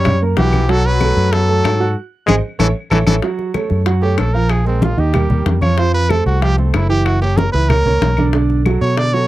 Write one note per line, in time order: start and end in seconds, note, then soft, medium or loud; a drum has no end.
0.00 0.34 F#2 loud
0.00 0.22 G3 medium
0.00 0.16 C#4 medium
0.00 0.16 C#5 medium
0.00 0.21 C#5 loud
0.00 0.16 C#6 medium
0.05 high bongo medium
0.05 high conga soft
0.05 low conga medium
0.05 claves medium
0.22 0.35 A#3 medium
0.22 0.35 A#4 medium
0.22 0.35 A#5 medium
0.22 high conga soft
0.37 1.11 B1 medium
0.37 0.71 E3 medium
0.37 0.63 F#3 medium
0.37 0.72 G4 medium
0.37 0.63 F#5 medium
0.37 0.64 F#6 medium
0.37 high bongo medium
0.37 low bongo medium
0.37 high conga medium
0.53 high bongo soft
0.53 high conga medium
0.53 claves medium
0.69 0.95 F#3 medium
0.69 0.85 F#3 medium
0.69 0.95 F#4 medium
0.69 0.87 A4 loud
0.69 0.95 F#5 medium
0.69 high bongo medium
0.69 high conga soft
0.85 1.32 F#3 medium
0.85 1.34 B4 loud
0.85 high bongo soft
0.85 high conga soft
1.01 1.27 A3 medium
1.01 1.27 A4 medium
1.01 1.28 A5 medium
1.01 high bongo medium
1.01 high conga medium
1.01 claves medium
1.17 1.61 F#2 loud
1.17 high bongo soft
1.17 high conga soft
1.32 1.96 F#3 medium
1.32 1.46 B3 medium
1.32 1.96 A4 medium
1.32 1.46 B4 medium
1.32 1.46 B5 medium
1.32 high bongo medium
1.32 high conga soft
1.48 1.75 A3 medium
1.48 1.75 A4 medium
1.48 1.75 A5 medium
1.48 high bongo soft
1.48 high conga soft
1.64 1.94 G#2 medium
1.64 high bongo medium
1.64 low bongo medium
1.64 high conga soft
1.64 claves medium
1.80 1.93 F#4 medium
1.80 1.94 F#5 medium
1.80 1.94 F#6 medium
2.27 2.40 G#1 loud
2.27 2.35 G#3 loud
2.27 2.38 G#4 loud
2.27 2.35 G#4 medium
2.27 2.38 C5 loud
2.27 2.38 D#5 loud
2.27 low bongo loud
2.27 high conga loud
2.27 claves loud
2.59 2.72 A1 loud
2.59 2.68 E3 medium
2.59 2.70 A4 medium
2.59 2.67 A4 loud
2.59 2.70 C#5 loud
2.59 2.70 E5 medium
2.59 low bongo loud
2.59 high conga medium
2.59 claves loud
2.90 3.03 A1 medium
2.90 2.99 E3 loud
2.90 2.98 A4 medium
2.90 3.02 A4 loud
2.90 3.02 C#5 loud
2.90 3.02 E5 loud
2.90 low bongo loud
2.90 high conga medium
2.90 claves loud
3.06 3.19 A1 medium
3.06 3.16 E3 medium
3.06 3.14 A4 loud
3.06 3.18 A4 loud
3.06 3.18 C#5 medium
3.06 3.18 E5 medium
3.06 low bongo loud
3.06 high conga loud
3.06 claves loud
3.22 3.50 F#3 medium
3.22 3.50 F#4 medium
3.22 3.50 F#5 medium
3.22 high bongo medium
3.22 high conga soft
3.39 high bongo soft
3.39 high conga soft
3.54 3.81 A3 medium
3.54 3.81 A4 medium
3.54 3.81 C#5 medium
3.54 high bongo medium
3.54 high conga medium
3.54 claves medium
3.70 4.16 F#2 loud
3.70 high bongo soft
3.70 high conga soft
3.86 4.00 F#3 medium
3.86 4.00 F#4 medium
3.86 4.00 F#5 medium
3.86 high bongo medium
3.86 high conga soft
4.02 4.29 A3 medium
4.02 4.19 G4 medium
4.02 4.29 A4 medium
4.02 4.29 C#5 medium
4.02 high bongo soft
4.02 high conga soft
4.18 4.93 A#1 medium
4.18 4.35 A4 medium
4.18 high bongo medium
4.18 low bongo medium
4.18 high conga soft
4.18 claves medium
4.33 4.61 F3 medium
4.33 4.61 F4 medium
4.33 4.52 A#4 medium
4.33 4.61 F5 medium
4.49 4.66 G#4 medium
4.49 high bongo medium
4.49 high conga soft
4.49 claves medium
4.65 4.92 G#3 medium
4.65 4.84 C4 medium
4.65 4.92 G#4 medium
4.65 4.93 A#4 medium
4.65 high bongo soft
4.65 high conga soft
4.82 5.01 F4 medium
4.82 high bongo medium
4.82 high conga medium
4.97 5.28 D#2 loud
4.97 5.11 D#3 medium
4.97 5.11 D#4 medium
4.97 5.47 G4 medium
4.97 5.11 D#5 medium
4.97 high bongo soft
4.97 high conga soft
5.14 5.27 G3 medium
5.14 5.27 G4 medium
5.14 5.28 A#4 medium
5.14 high bongo medium
5.14 high conga soft
5.14 low conga medium
5.14 claves medium
5.30 5.45 D#2 medium
5.30 5.57 G3 medium
5.30 5.57 G4 medium
5.30 5.57 A#4 medium
5.30 high conga soft
5.30 low conga medium
5.46 6.21 F2 medium
5.46 high bongo medium
5.46 low bongo medium
5.46 high conga medium
5.61 5.75 F3 medium
5.61 5.75 F4 medium
5.61 5.80 C#5 medium
5.61 5.75 F5 medium
5.61 high bongo soft
5.61 high conga medium
5.61 claves medium
5.78 6.04 F3 medium
5.78 6.04 F4 medium
5.78 5.93 C5 medium
5.78 6.05 F5 medium
5.78 high bongo medium
5.78 high conga soft
5.94 6.12 B4 loud
5.94 high bongo soft
5.94 high conga soft
6.09 6.36 A3 medium
6.09 6.36 A4 medium
6.09 6.26 A4 medium
6.09 6.36 C5 medium
6.09 high bongo medium
6.09 high conga medium
6.09 claves medium
6.26 6.71 C2 loud
6.26 6.43 F#4 medium
6.26 high bongo soft
6.26 high conga soft
6.41 6.55 F3 medium
6.41 6.55 F4 medium
6.41 6.58 G4 loud
6.41 6.55 F5 medium
6.41 high bongo medium
6.41 high conga soft
6.57 6.84 A3 medium
6.57 6.74 C4 soft
6.57 6.84 A4 medium
6.57 6.85 C5 medium
6.57 high bongo soft
6.57 high conga soft
6.74 7.48 F#1 medium
6.74 6.89 E4 medium
6.74 high bongo medium
6.74 low bongo medium
6.74 high conga soft
6.74 claves medium
6.89 7.16 E3 medium
6.89 7.16 E4 medium
6.89 7.07 G4 loud
6.89 7.16 E5 medium
7.06 7.21 F#4 medium
7.06 high bongo medium
7.06 high conga soft
7.06 claves medium
7.21 7.48 A#3 medium
7.21 7.38 G4 medium
7.21 7.48 A#4 medium
7.21 7.48 C#5 medium
7.21 high bongo soft
7.21 high conga soft
7.37 7.51 A#4 medium
7.37 high bongo medium
7.37 high conga loud
7.52 7.84 C#2 loud
7.52 7.67 E3 medium
7.52 7.67 E4 medium
7.52 7.70 B4 loud
7.52 7.68 E5 medium
7.52 high bongo soft
7.52 high conga soft
7.69 7.83 A#3 medium
7.69 8.33 A#4 medium
7.69 7.83 A#4 medium
7.69 7.83 C#5 medium
7.69 high bongo medium
7.69 high conga soft
7.69 low conga medium
7.69 claves medium
7.86 8.01 C#2 medium
7.86 8.12 A#3 medium
7.86 8.12 A#4 medium
7.86 8.12 C#5 medium
7.86 high conga soft
7.86 low conga medium
8.02 8.76 B1 medium
8.02 high bongo medium
8.02 low bongo medium
8.02 high conga medium
8.17 8.31 D3 medium
8.17 8.32 D4 medium
8.17 8.32 D5 medium
8.17 high bongo soft
8.17 high conga medium
8.17 claves medium
8.33 8.60 D3 medium
8.33 8.60 D4 medium
8.33 8.60 D5 medium
8.33 high bongo medium
8.50 high bongo soft
8.50 high conga soft
8.66 8.92 F#3 medium
8.66 8.92 F#4 medium
8.66 8.92 A4 medium
8.66 high bongo medium
8.66 high conga medium
8.66 claves medium
8.81 9.26 B2 medium
8.81 8.99 C#5 medium
8.81 high bongo soft
8.81 high conga soft
8.97 9.10 D3 medium
8.97 9.11 D4 medium
8.97 9.11 D5 medium
8.97 9.15 D5 loud
8.97 high bongo medium
8.97 high conga soft
9.13 9.28 F#3 medium
9.13 9.28 F#4 medium
9.13 9.28 A4 medium
9.13 9.28 C#5 medium
9.13 high bongo soft
9.13 high conga soft